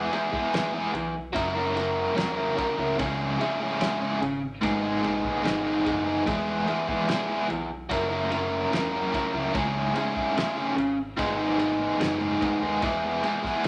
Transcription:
Already playing: E2 E3 B3 E4 G#4
0.11 G#3 B3 E4 G#4, ride
0.32 G#3 B3 E4 G#4, kick
0.53 E2 E3 G#3 B3 E4 G#4, snare, ride
0.73 G#3 B3 E4 G#4
0.93 B1, muted overdriven electric guitar stroke, ride
1.33 F#1 F#3 C#4 E4 A#4, kick, ride
1.55 C#4 E4 A#4
1.74 F#3 C#4 E4 A#4, snare, ride
2.15 E1 F#3 C#4 E4 A#4, snare, ride
2.35 C#4 E4 A#4
2.55 F#3 C#4 E4 A#4, kick, ride
2.77 C#2 C#4 E4 A#4
2.99 C#2 C#3 G#3 C#4 E4 G#4, kick, ride
3.39 G#3 C#4 E4 G#4, ride
3.60 C#4 E4 G#4
3.80 C#3 G#3 C#4 E4 G#4, snare, ride
4.00 C#4 E4 G#4
4.22 G#1, muted overdriven electric guitar stroke, ride
4.61 G#1 G#2 D#3 G#3 B3 D#4 G#4, kick, ride
4.82 G#3 B3 D#4 G#4
5.02 A#1 G#3 B3 D#4 G#4, ride
5.25 kick
5.43 G#1 G#2 D#3 G#3 B3 D#4 G#4, snare, ride
5.65 G#3 B3 D#4 G#4
5.85 F#1 G#3 B3 D#4 G#4, kick, ride
6.05 G#3 B3 D#4 G#4
6.27 E1 E2 E3 G#3 B3 E4 G#4, kick, ride
6.67 G#3 B3 E4 G#4, ride
6.88 G#3 B3 E4 G#4, kick
7.08 E2 E3 G#3 B3 E4 G#4, snare, ride
7.28 G#3 B3 E4 G#4
7.50 B1, muted overdriven electric guitar stroke, ride
7.89 F#1 F#3 C#4 E4 A#4, kick, ride
8.09 C#4 E4 A#4
8.30 F#3 C#4 E4 A#4, ride
8.72 E1 F#3 C#4 E4 A#4, snare, ride
8.92 C#4 E4 A#4
9.13 F#3 C#4 E4 A#4, kick, ride
9.33 C#2 C#4 E4 A#4
9.54 C#2 C#3 G#3 C#4 E4 G#4, kick, ride
9.95 G#3 C#4 E4 G#4, ride
10.15 C#4 E4 G#4, kick
10.36 C#3 G#3 C#4 E4 G#4, snare, ride
10.56 C#4 E4 G#4
10.76 G#1, muted overdriven electric guitar stroke, ride
11.17 G#1 G#2 D#3 G#3 B3 D#4 G#4, kick, ride
11.37 G#3 B3 D#4 G#4
11.58 G#3 B3 D#4 G#4, ride
11.99 F#1 G#2 D#3 G#3 B3 D#4 G#4, snare, ride
12.19 G#3 B3 D#4 G#4
12.40 G#3 B3 D#4 G#4, kick, ride
12.61 D#2 G#3 B3 D#4 G#4
12.81 E1 E2 E3 G#3 B3 E4 G#4, kick, ride
13.23 G#3 B3 E4 G#4, ride
13.43 G#3 B3 E4 G#4, kick, snare
13.64 E2 E3, ride

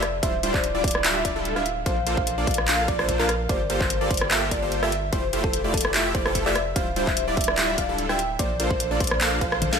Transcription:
Already playing: F1
0.03 cross-stick, closed hi-hat
0.23 D1 G3 D4 E4 F4 C5 E5, kick, closed hi-hat
0.43 G3 D4 E4 F4 C5, closed hi-hat
0.54 D5, kick, clap
0.64 closed hi-hat
0.75 G3 D4 E4 F4 D5
0.84 D5, kick, closed hi-hat
0.88 closed hi-hat
0.91 closed hi-hat
0.95 cross-stick
1.05 G3 D4 E4 F4 E5, clap, closed hi-hat
1.25 G3 D4 E4 F4 D5 E5, kick, closed hi-hat
1.36 G3 D4 E4 F4 A4
1.45 closed hi-hat
1.56 G3 D4 E4 F4 E5 F5, cross-stick
1.66 closed hi-hat
1.86 A#1 A#3 D4 F4 A4 C5 F5, kick, closed hi-hat
2.06 A#3 D4 F4 A4 C5, closed hi-hat
2.17 F5, kick
2.27 closed hi-hat
2.38 A#3 D4 F4 A4 D5
2.47 F5, kick, closed hi-hat
2.51 closed hi-hat
2.54 closed hi-hat
2.58 cross-stick
2.68 A#3 D4 F4 A4 F5, clap, closed hi-hat
2.88 A#3 D4 F4 A4 D5, kick, closed hi-hat
2.99 A#3 D4 F4 A4 C5, cross-stick
3.09 kick, closed hi-hat
3.19 A#3 D4 F4 A4 A#4 F5, clap
3.29 cross-stick, closed hi-hat
3.49 G1 A#3 F4 G4 A4 C5 D5, kick, closed hi-hat
3.70 A#3 F4 G4 A4 C5, closed hi-hat
3.80 C5, kick, clap
3.90 closed hi-hat
4.01 A#3 F4 G4 A4 D5
4.11 C5, kick, closed hi-hat
4.14 closed hi-hat
4.17 closed hi-hat
4.21 cross-stick
4.31 A#3 F4 G4 A4 E5, clap, closed hi-hat
4.51 A#3 F4 G4 A4 D5, kick, closed hi-hat
4.62 A#3 F4 G4 A4 C5
4.72 closed hi-hat
4.83 A#3 F4 G4 A4 E5, cross-stick
4.92 closed hi-hat
5.13 F1 A3 E4 F4 G4 C5, kick, closed hi-hat
5.33 A3 E4 F4 G4 C5, closed hi-hat
5.44 A4, kick
5.53 closed hi-hat
5.64 A3 E4 F4 G4 D5
5.74 A4, kick, closed hi-hat
5.78 closed hi-hat
5.81 closed hi-hat
5.85 cross-stick
5.94 A3 E4 F4 G4 E5, clap, closed hi-hat
6.15 A3 E4 F4 G4 C5 D5, kick, closed hi-hat
6.26 A3 E4 F4 G4 A4, cross-stick
6.35 kick, closed hi-hat
6.46 A3 E4 F4 G4 D5 E5, clap
6.56 cross-stick, closed hi-hat
6.76 D1 G3 D4 E4 F4 C5 F5, kick, closed hi-hat
6.96 G3 D4 E4 F4 C5, closed hi-hat
7.07 E5, kick, clap
7.17 closed hi-hat
7.28 G3 D4 E4 F4 D5
7.37 E5, kick, closed hi-hat
7.41 closed hi-hat
7.44 closed hi-hat
7.48 cross-stick
7.58 G3 D4 E4 F4 E5, clap, closed hi-hat
7.78 G3 D4 E4 F4 D5 F5, kick, closed hi-hat
7.89 G3 D4 E4 F4 A4
7.98 closed hi-hat
8.09 G3 D4 E4 F4 E5 G5, cross-stick
8.19 closed hi-hat
8.39 A#1 A#3 D4 F4 A4 C5 D5, kick, closed hi-hat
8.60 A#3 D4 F4 A4 C5, closed hi-hat
8.71 C5, kick
8.80 closed hi-hat
8.91 A#3 D4 F4 A4 D5
9.00 C5, kick, closed hi-hat
9.04 closed hi-hat
9.07 closed hi-hat
9.11 cross-stick
9.21 A#3 D4 F4 A4 F5, clap, closed hi-hat
9.41 A#3 D4 F4 A4 C5 F5, kick, closed hi-hat
9.52 cross-stick
9.62 kick, closed hi-hat, high tom
9.73 A#3 D4 F4 A4 F5, snare, clap

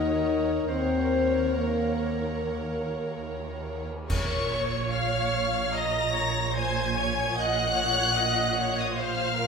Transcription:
Already playing: D#2 D#4 A#4 C#5 D#5 F#5
0.68 D#2 C4 A#4 C5 C#5 F#5
1.53 A#3 A#4
4.09 A#1 A#2 A#4 C#5 C#6, concert bass drum, crash
4.52 C#5
4.92 F5 F6
5.76 D#5 A#5 A#6
6.16 C#5
6.56 C5 G#5 G#6
6.97 C#5
7.35 D#5 F#5
7.39 F#6
7.77 C#5
8.17 D#5
8.58 C#5
8.78 D#5 D#6
8.97 C5 F5 F6
9.37 A#4

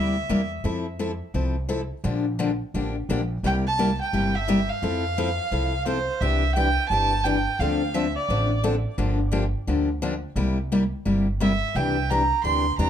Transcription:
Already playing: D2 C3 G3 A#3 E4 G4 E5
0.29 E2 C3 G3 A#3 E4 G4
0.64 F2 F3 C4 E4 A4
0.99 F3 C4 E4 A4
1.34 C2 F3 C4 E4 A4
1.69 F3 C4 E4 A4
2.04 A#1 D3 F3 A#3 D4 G4
2.39 D3 F3 A#3 D4 G4
2.74 A1 D3 F3 A#3 D4 G4
3.09 A#1 D3 F3 A#3 D4 G4
3.43 C2 C3 G3 A#3 E4 G4 G5
3.66 A5
3.79 C3 G3 A#3 E4 G4
4.01 G5
4.13 G1 C3 G3 A#3 E4 G4
4.35 E5
4.48 C3 G3 A#3 E4 G4
4.69 F5
4.82 F2 F3 C4 E4 A4
5.18 F3 C4 E4 A4
5.51 C2 F3 C4 E4 A4
5.86 F3 C4 E4 A4 C5
6.20 C2 C3 E3 D4 G4 E5
6.55 C3 E3 D4 G4 G5
6.89 G1 C3 E3 D4 A5
6.93 G4
7.24 C3 E3 D4 G4 G5
7.59 D2 D3 F3 C4 D4 A4 F5
7.94 D3 F3 C4 D4 A4 E5
8.16 D5
8.29 A1 D3 F3 C4 D4 A4
8.63 D3 F3 C4 D4 A4
8.98 G1 D3 F3 A#3 D4 G4
9.32 D3 F3 A#3 D4 G4
9.67 D2 D3 F3 A#3 D4 G4
10.02 D3 F3 A#3 D4 G4
10.36 C2 C3 G3 A#3 E4 G4
10.72 C3 G3 A#3 E4 G4
11.05 G1 C3 G3 A#3 E4 G4
11.40 C3 G3 A#3 E4 G4 E5
11.75 C2 C3 E3 D4 G4 G5
12.10 C3 E3 D4 G4 A#5
12.44 D2 C3 E3 D4 G4 C6
12.78 E2 C3 E3 D4 G4 A#5

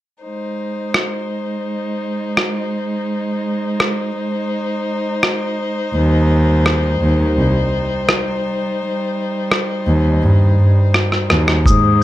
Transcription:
0.23 G#3 D#4 C5
0.94 cross-stick
2.37 cross-stick
3.80 cross-stick
5.23 cross-stick
5.94 D#2 G3
6.66 cross-stick
7.01 D#2
7.37 C2
8.09 cross-stick
9.52 cross-stick
9.87 D#2
10.23 G2
10.58 G2
10.94 cross-stick
11.12 cross-stick
11.30 D#2, cross-stick
11.48 cross-stick
11.66 G#2 G#3 D#4 C5 D#6, kick, shaker

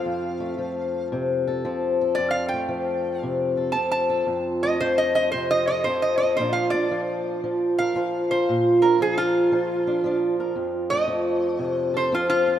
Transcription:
Already playing: F3 A3 C4 A4 F5
0.06 F2
0.40 A3
0.58 F3
1.12 C3
1.47 A4
1.65 F3 C4
2.01 A4
2.15 F2 D5
2.31 F5
2.48 G5
2.54 A3
2.69 F3
3.18 F5
3.23 C3
3.57 A4
3.72 F3 C4 A5
3.92 A5
4.10 A4
4.27 F2
4.63 A3 D#5
4.81 F3 C5
4.98 D#5
5.15 D#5
5.32 C3 C5
5.51 D#5
5.67 A4 D#5
5.84 F3 C4 C5
6.02 D#5
6.18 D#5
6.23 A4
6.37 A#2 F3 D4 C5
6.41 F4 A#4
6.53 F5
6.70 D4 D5
6.91 F3
7.44 F3
7.78 A#4 F5
7.96 F3 F4
8.31 A#4 C5
8.49 A#2
8.82 D4 A#4
9.00 F3 G#4
9.18 F4
9.52 F3
9.87 D4
10.04 F3 D4
10.40 A#4
10.56 F2
10.90 A3 D#5
11.08 F3
11.59 C3
11.94 A4 C5
12.12 F3 C4 F4
12.30 F4
12.47 C4

